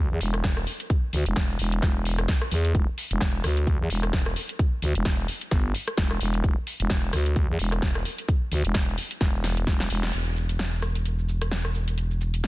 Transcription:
0.11 E2
0.21 E1, open hi-hat
0.34 cross-stick, closed hi-hat
0.44 kick, snare, closed hi-hat
0.57 cross-stick
0.67 open hi-hat
0.80 closed hi-hat
0.90 kick, closed hi-hat
1.13 D2, open hi-hat
1.26 E1, closed hi-hat
1.36 kick, snare, closed hi-hat
1.59 E1, open hi-hat
1.72 closed hi-hat
1.82 E1, kick, snare, closed hi-hat
2.05 open hi-hat
2.18 cross-stick, closed hi-hat
2.28 kick, snare, closed hi-hat
2.41 cross-stick
2.51 E2, open hi-hat
2.65 closed hi-hat
2.75 E1, kick, closed hi-hat
2.98 open hi-hat
3.11 E1, closed hi-hat
3.21 kick, snare, closed hi-hat
3.44 D2, cross-stick, open hi-hat
3.57 closed hi-hat
3.67 kick, closed hi-hat
3.80 E2
3.90 E1, open hi-hat
4.03 cross-stick, closed hi-hat
4.13 kick, snare, closed hi-hat
4.26 cross-stick
4.36 open hi-hat
4.49 closed hi-hat
4.59 kick, closed hi-hat
4.82 D2, open hi-hat
4.95 E1, closed hi-hat
5.05 kick, snare, closed hi-hat
5.28 open hi-hat
5.41 closed hi-hat
5.51 G1, kick, snare, closed hi-hat
5.75 open hi-hat
5.88 cross-stick, closed hi-hat
5.97 E1, kick, snare, closed hi-hat
6.11 cross-stick
6.21 E1, open hi-hat
6.34 closed hi-hat
6.44 E1, kick, closed hi-hat
6.67 open hi-hat
6.80 E1, closed hi-hat
6.90 kick, snare, closed hi-hat
7.13 D2, cross-stick, open hi-hat
7.26 closed hi-hat
7.36 kick, closed hi-hat
7.49 E2
7.59 E1, open hi-hat
7.72 cross-stick, closed hi-hat
7.82 kick, snare, closed hi-hat
7.95 cross-stick
8.05 open hi-hat
8.18 closed hi-hat
8.28 kick, closed hi-hat
8.52 D2, open hi-hat
8.65 E1, closed hi-hat
8.75 kick, snare, closed hi-hat
8.98 open hi-hat
9.11 closed hi-hat
9.21 E1, kick, snare, closed hi-hat
9.44 snare, open hi-hat
9.57 closed hi-hat
9.67 E1, kick, snare, closed hi-hat
9.80 snare
9.90 E1, open hi-hat
10.03 snare, closed hi-hat
10.13 E1, closed hi-hat, cabasa
10.27 cabasa
10.37 cabasa
10.49 closed hi-hat, cabasa
10.59 snare, closed hi-hat, cabasa
10.73 cabasa
10.82 cross-stick, cabasa
10.95 closed hi-hat, cabasa
11.05 closed hi-hat, cabasa
11.19 cabasa
11.29 cabasa
11.42 cross-stick, closed hi-hat, cabasa
11.51 snare, closed hi-hat, cabasa
11.65 cross-stick, cabasa
11.75 cabasa
11.88 closed hi-hat, cabasa
11.98 closed hi-hat, cabasa
12.11 cabasa
12.21 cabasa
12.34 closed hi-hat, cabasa
12.44 snare, closed hi-hat, cabasa

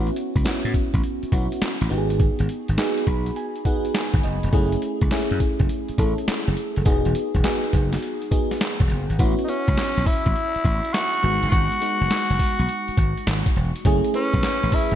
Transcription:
Already playing: B3 C#4 E4 F#4
0.07 closed hi-hat
0.16 closed hi-hat
0.36 C#2, kick, closed hi-hat
0.44 B3 C#4 E4 F#4, muted slap bass stroke, snare, clap, closed hi-hat
0.65 A2, closed hi-hat
0.74 kick, closed hi-hat
0.94 A1, kick, closed hi-hat
1.04 closed hi-hat
1.23 muted slap bass stroke, closed hi-hat
1.32 B1 B3 C#4 E4 F#4, kick, closed hi-hat
1.52 closed hi-hat
1.62 muted slap bass stroke, snare, clap, closed hi-hat
1.81 A1, closed hi-hat
1.90 G#1 B3 D#4 F#4 G4, closed hi-hat
1.98 G#4
2.10 closed hi-hat
2.20 kick, closed hi-hat
2.39 G#1, closed hi-hat
2.49 closed hi-hat
2.68 G#1, closed hi-hat
2.78 B3 D#4 F#4 G#4, snare, clap, closed hi-hat
2.98 closed hi-hat
3.07 B1 B5, kick, closed hi-hat
3.26 closed hi-hat
3.36 G#5, closed hi-hat
3.56 closed hi-hat
3.65 B3 D#4 F#4 G#4 F#5, kick, closed hi-hat
3.85 closed hi-hat
3.94 G#5, snare, clap, closed hi-hat
4.14 G#1, kick, closed hi-hat
4.23 F#1 D#5, closed hi-hat
4.43 E1, closed hi-hat
4.53 F#1 A3 C#4 E4 G#4, kick, closed hi-hat
4.72 closed hi-hat
4.82 closed hi-hat
5.01 C#2, kick, closed hi-hat
5.11 A3 C#4 E4 G#4, snare, clap, closed hi-hat
5.31 F#2, closed hi-hat
5.40 kick, closed hi-hat
5.59 F#1, kick, closed hi-hat
5.69 closed hi-hat
5.89 muted slap bass stroke, closed hi-hat
5.98 A1 A3 C#4 E4 A4, kick, closed hi-hat
6.18 closed hi-hat
6.28 muted slap bass stroke, snare, clap, closed hi-hat
6.47 F#1, closed hi-hat
6.57 closed hi-hat
6.76 F#1, closed hi-hat
6.85 E1 B3 D#4 F#4 G#4, kick, closed hi-hat
7.05 E1, closed hi-hat
7.15 closed hi-hat
7.35 E1, kick, closed hi-hat
7.44 B3 D#4 F#4 G#4, snare, clap, closed hi-hat
7.64 closed hi-hat
7.73 F#1, kick, closed hi-hat
7.93 snare, closed hi-hat
8.02 closed hi-hat
8.22 closed hi-hat
8.31 B3 D#4 F#4 G#4, kick, closed hi-hat
8.51 snare, closed hi-hat
8.61 snare, clap, closed hi-hat
8.80 E1, kick, closed hi-hat
8.90 F#1, closed hi-hat
9.10 G#1, closed hi-hat
9.19 A1 B3 C#4 E4 F#4, kick, closed hi-hat, shaker
9.38 closed hi-hat, shaker
9.44 B3 C#4 D#4
9.48 C#4 E4 F#4, closed hi-hat, shaker
9.68 C#2, kick, closed hi-hat, shaker
9.77 snare, clap, closed hi-hat, shaker
9.97 B1, closed hi-hat, shaker
10.06 E4, kick, open hi-hat
10.26 A1, kick, closed hi-hat, shaker
10.36 closed hi-hat, shaker
10.55 muted slap bass stroke, closed hi-hat, shaker
10.65 A1, kick, closed hi-hat, shaker
10.84 closed hi-hat, shaker
10.94 F#4, snare, clap, closed hi-hat, shaker
11.13 closed hi-hat, shaker
11.23 G#1 G#3 B3 D#4 F#4, closed hi-hat, shaker
11.43 F#1, closed hi-hat, shaker
11.48 F4 F#4, shaker
11.52 G#1, kick, closed hi-hat
11.71 closed hi-hat, shaker
11.81 G#3 B3 D#4 F#4, closed hi-hat, shaker
12.01 F#1, closed hi-hat, shaker
12.11 snare, clap, closed hi-hat, shaker
12.30 F#1, closed hi-hat, shaker
12.39 kick, open hi-hat
12.59 B1, closed hi-hat, shaker
12.69 closed hi-hat, shaker
12.88 muted slap bass stroke, closed hi-hat, shaker
12.97 G#1, kick, closed hi-hat, shaker
13.17 closed hi-hat, shaker
13.27 G#1, snare, clap, closed hi-hat, shaker
13.46 kick, closed hi-hat, shaker
13.56 E1, closed hi-hat, shaker
13.76 closed hi-hat, shaker
13.85 F#1 A3 C#4 E4 G#4, kick, closed hi-hat, shaker
14.04 closed hi-hat, shaker
14.14 A3 C#4 E4 B4, closed hi-hat, shaker
14.34 B1, kick, closed hi-hat, shaker
14.43 snare, clap, closed hi-hat, shaker
14.63 A1, closed hi-hat, shaker
14.72 E4, kick, open hi-hat
14.92 kick, closed hi-hat, shaker

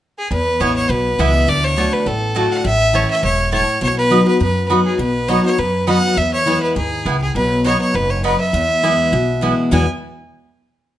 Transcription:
0.18 G#4
0.31 E2 B4
0.60 A1 E3 G#3 B3 E4 B4 C#5 G#5
0.76 C#5
0.89 B1 B2 B4
1.19 C#2 E3 G#3 B3 E4 B4 E5 G#5
1.48 D2 D3 D5
1.64 C#5
1.76 D3 A3 D4 F#4 D5 A5
1.93 B4
2.06 A1 A2 A4
2.35 D3 A3 D4 F#4 D5 A5
2.52 F#5
2.65 A1 A2 E5
2.93 E3 A3 C#4 E4 C#5 A5
3.10 E5
3.23 E1 G#2 C#5
3.52 A2 A3 E4 C#5 A5
3.81 B1 B2 C#5
3.98 B4
4.10 F#3 B3 D#4 F#4 D#5 B5
4.26 D#4 F#4 B4
4.40 F#2 B4
4.70 F#3 B3 D#4 F#4 D#5 B5
4.85 G#4
4.99 B1 B2 B4
5.28 F#3 B3 D#4 F#4 C#5 D#5 B5
5.44 D#4 F#4 C#5
5.58 F#2 B4
5.87 F#3 B3 D#4 F#4 D#5 F#5 B5
6.17 E2 E5
6.33 C#5
6.46 E3 G#3 B3 E4 B4 G#5
6.62 B4
6.76 D#2 G#2 G#4
7.05 C#2 A2 B3 E4 B4 G#5
7.22 G#4
7.35 B1 B2 B4
7.64 F#3 B3 D#4 F#4 C#5 D#5 B5
7.81 C#5
7.94 F#1 G#2 B4
8.10 C#5
8.24 F#2 B3 F#4 B4 D#5 B5
8.40 E5
8.53 E2
8.83 E3 G#3 B3 E4 B4 G#5
9.12 B1 B2
9.41 E3 G#3 B3 E4 B4 G#5
9.71 E2 B2 E3 G#3 B3 E4 B4 G#5

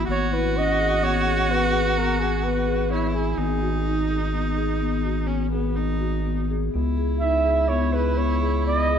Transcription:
0.08 G#1 B3 F#4 C#5
0.31 E4 B4
0.56 C#4 D#5
0.79 G#4
1.02 B3 C#5
1.26 G#4
1.49 B3 B4
1.72 G#4
1.96 B3 A#4
2.20 G#4
2.44 B3 B4
2.67 G#4
2.91 B3 E4 C#5
3.14 G#4
3.37 G#1 B3 D#4
3.62 F#4
3.86 D#4
4.10 G#4
4.34 B3
4.57 G#4
4.80 B3
5.04 F#4
5.27 B3 C#4
5.52 B3 G#4
5.76 B3 D#4
6.00 F#4
6.26 B3
6.50 G#4
6.74 C#2 B3 E4
6.97 G#4
7.20 D#4 E5
7.45 G#4
7.68 B3 C#5
7.93 G#4 B4
8.18 B3 C#5
8.42 G#4
8.67 B3 D#5
8.90 G#4

